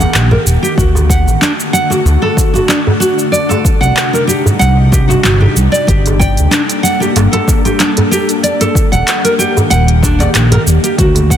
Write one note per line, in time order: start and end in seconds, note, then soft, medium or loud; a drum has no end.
0.00 0.75 D#3 medium
0.00 0.75 A#3 medium
0.00 0.75 G4 medium
0.00 0.30 F#5 medium
0.00 cabasa soft
0.14 0.37 A#1 medium
0.14 clap medium
0.14 cabasa soft
0.31 0.40 A#4 medium
0.31 djembe bass medium
0.46 0.58 D#1 medium
0.46 cabasa medium
0.63 0.77 G4 medium
0.63 cabasa soft
0.77 1.28 D2 medium
0.77 3.30 D3 medium
0.77 3.31 A3 medium
0.77 5.84 D4 medium
0.77 3.30 F#4 medium
0.77 1.08 F#4 medium
0.77 kick loud
0.77 cabasa soft
0.95 djembe tone medium
0.95 cabasa soft
1.10 1.40 F#5 medium
1.10 kick loud
1.10 cabasa medium
1.27 1.37 A1 medium
1.27 djembe tone soft
1.27 cabasa soft
1.41 1.51 D4 medium
1.41 clap loud
1.41 cabasa soft
1.60 cabasa soft
1.73 1.89 F#5 loud
1.73 cabasa medium
1.90 1.99 F#4 medium
1.90 djembe slap soft
1.90 cabasa soft
2.05 2.17 D2 medium
2.05 djembe slap medium
2.05 cabasa soft
2.22 2.53 A4 medium
2.22 djembe tone medium
2.37 kick loud
2.37 djembe slap soft
2.37 cabasa medium
2.54 2.68 F#4 medium
2.54 djembe tone medium
2.54 cabasa soft
2.68 2.79 D4 medium
2.68 clap medium
2.68 cabasa soft
2.87 djembe bass medium
3.00 3.17 F#4 medium
3.00 cabasa medium
3.19 cabasa soft
3.32 5.87 C3 medium
3.32 8.40 G3 medium
3.32 5.86 D#4 medium
3.32 3.49 D5 medium
3.32 cabasa soft
3.49 3.80 A4 medium
3.49 djembe tone medium
3.49 cabasa soft
3.65 kick loud
3.65 cabasa medium
3.81 3.92 C2 loud
3.81 4.12 F#5 medium
3.81 cabasa soft
3.97 clap medium
3.97 cabasa soft
4.13 4.22 A#4 medium
4.13 cabasa soft
4.27 4.44 G4 medium
4.27 djembe tone soft
4.27 cabasa medium
4.46 djembe slap soft
4.46 djembe bass medium
4.46 cabasa soft
4.59 5.18 C2 medium
4.59 4.76 F#5 medium
4.59 cabasa soft
4.92 5.08 G4 medium
4.92 kick loud
4.92 djembe slap soft
4.92 cabasa medium
5.09 5.23 F#4 medium
5.09 djembe slap medium
5.09 djembe tone medium
5.09 cabasa soft
5.24 5.47 G1 medium
5.24 5.40 F#4 medium
5.24 clap medium
5.24 cabasa soft
5.41 5.55 G4 medium
5.41 djembe bass medium
5.56 5.68 C2 medium
5.56 cabasa medium
5.72 5.87 D5 medium
5.72 cabasa soft
5.87 6.39 G1 medium
5.87 8.41 A#3 medium
5.87 8.41 D4 medium
5.87 6.18 G4 medium
5.87 8.41 A4 medium
5.87 kick loud
5.87 closed hi-hat medium
5.87 cabasa soft
6.06 closed hi-hat soft
6.06 djembe tone medium
6.06 cabasa soft
6.20 6.50 G5 medium
6.20 kick medium
6.20 cabasa medium
6.37 6.48 D2 loud
6.37 closed hi-hat soft
6.37 djembe tone soft
6.37 cabasa soft
6.51 6.61 D4 medium
6.51 clap medium
6.51 closed hi-hat medium
6.51 cabasa soft
6.69 closed hi-hat soft
6.69 cabasa soft
6.83 6.99 F#5 medium
6.83 cabasa medium
7.00 7.09 G4 medium
7.00 djembe slap soft
7.00 cabasa soft
7.16 7.28 G1 medium
7.16 closed hi-hat medium
7.16 djembe slap medium
7.16 cabasa soft
7.33 7.63 A4 medium
7.33 closed hi-hat soft
7.33 djembe tone medium
7.48 kick medium
7.48 djembe slap soft
7.48 cabasa medium
7.65 7.79 G4 medium
7.65 closed hi-hat soft
7.65 djembe tone medium
7.65 cabasa soft
7.80 7.90 D4 medium
7.80 clap medium
7.80 closed hi-hat medium
7.80 cabasa soft
7.97 closed hi-hat soft
7.97 djembe bass medium
8.11 8.28 G4 loud
8.11 cabasa medium
8.29 closed hi-hat soft
8.29 cabasa soft
8.43 10.97 D#3 medium
8.43 10.97 A#3 medium
8.43 10.97 G4 medium
8.43 8.60 D5 medium
8.43 closed hi-hat medium
8.43 cabasa soft
8.61 8.91 A4 medium
8.61 closed hi-hat soft
8.61 djembe tone medium
8.61 cabasa soft
8.75 kick loud
8.75 cabasa medium
8.92 9.03 D#1 loud
8.92 9.23 F#5 medium
8.92 closed hi-hat soft
8.92 cabasa soft
9.08 clap medium
9.08 closed hi-hat medium
9.08 cabasa soft
9.24 9.33 A#4 medium
9.24 closed hi-hat soft
9.24 cabasa soft
9.39 9.55 G4 loud
9.39 djembe tone soft
9.39 cabasa medium
9.57 djembe slap soft
9.57 djembe bass medium
9.57 cabasa soft
9.70 10.28 D#1 medium
9.70 9.87 F#5 loud
9.70 closed hi-hat medium
9.70 cabasa soft
9.88 closed hi-hat soft
10.03 10.19 D4 medium
10.03 kick medium
10.03 djembe slap medium
10.03 cabasa medium
10.20 10.28 D5 medium
10.20 closed hi-hat soft
10.20 djembe slap medium
10.20 djembe tone medium
10.20 cabasa soft
10.35 10.58 A#1 medium
10.35 clap medium
10.35 closed hi-hat medium
10.35 cabasa soft
10.52 10.61 A#4 medium
10.52 closed hi-hat soft
10.52 djembe bass medium
10.67 10.79 D#1 medium
10.67 cabasa medium
10.84 10.98 G4 medium
10.84 closed hi-hat soft
10.84 cabasa soft
10.98 11.37 D2 loud
10.98 11.37 D3 medium
10.98 11.37 A3 medium
10.98 11.37 D4 medium
10.98 11.37 F#4 medium
10.98 11.29 F#4 medium
10.98 kick loud
10.98 closed hi-hat medium
10.98 cabasa soft
11.15 closed hi-hat soft
11.15 djembe tone medium
11.15 cabasa soft
11.30 11.37 F#5 medium
11.30 kick medium
11.30 cabasa medium